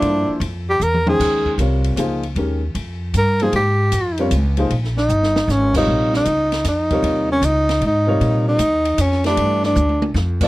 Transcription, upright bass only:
X:1
M:3/4
L:1/8
Q:"Swing" 1/4=154
K:Cmix
V:1 name="Upright bass" clef=bass
G,, z F,,2 E,,2 | [K:Ebmix] E,,2 C,,2 D,,2 | E,,2 F,,2 G,,2 | A,,2 F,,2 D,,2 |
B,,,2 G,,,2 A,,,2 | B,,,2 D,,2 F,,2 | E,,2 D,,2 A,,2 | B,,2 E,,2 F,,2 |
G,,2 =D,,2 F,,2 |]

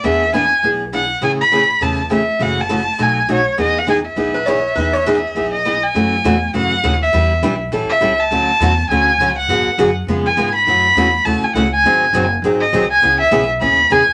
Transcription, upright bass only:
X:1
M:4/4
L:1/8
Q:"Swing" 1/4=203
K:E
V:1 name="Upright bass" clef=bass
E,,4 B,,,4 | A,,,4 E,,4 | F,,,4 B,,,4 | E,,4 B,,,4 |
E,,4 B,,,4 | F,,2 E,,2 F,,2 D,,2 | E,,2 B,,,2 A,,, z C,,2 | =D,,2 E,,2 D,,2 C,,2 |
G,, z F,,2 ^E,,2 G,,2 | F,,2 E,,2 D,, z C,,2 | G,,,2 F,,,2 G,,,2 ^B,,,2 | C,,2 B,,,2 D,,2 E,, z |]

